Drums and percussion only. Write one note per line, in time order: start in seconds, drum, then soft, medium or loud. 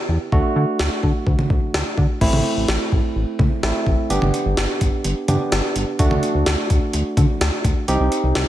0.32 kick loud
0.79 snare loud
1.03 kick medium
1.27 kick medium
1.39 mid tom medium
1.50 kick medium
1.74 snare loud
1.98 kick medium
2.21 kick loud
2.21 crash medium
2.33 mid tom medium
2.68 snare loud
2.92 kick medium
3.39 kick medium
3.39 mid tom loud
3.63 snare loud
3.87 kick medium
4.10 closed hi-hat medium
4.22 mid tom medium
4.34 closed hi-hat medium
4.57 snare loud
4.57 closed hi-hat medium
4.81 kick medium
4.81 closed hi-hat medium
5.04 closed hi-hat medium
5.28 closed hi-hat medium
5.28 mid tom loud
5.52 snare loud
5.52 closed hi-hat medium
5.76 closed hi-hat medium
5.99 kick loud
5.99 closed hi-hat medium
6.11 mid tom medium
6.23 closed hi-hat medium
6.46 snare loud
6.46 closed hi-hat medium
6.70 kick medium
6.70 closed hi-hat medium
6.93 closed hi-hat medium
7.17 kick loud
7.17 closed hi-hat medium
7.17 mid tom loud
7.41 snare loud
7.41 closed hi-hat medium
7.64 kick medium
7.64 closed hi-hat medium
7.88 closed hi-hat medium
8.12 closed hi-hat medium
8.35 snare loud
8.35 closed hi-hat medium